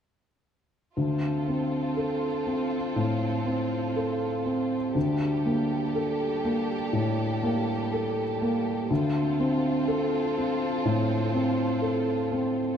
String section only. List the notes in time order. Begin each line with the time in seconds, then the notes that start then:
0.97 C4 F4 A4
4.97 G3 G4 A4
8.90 C4 F4 A4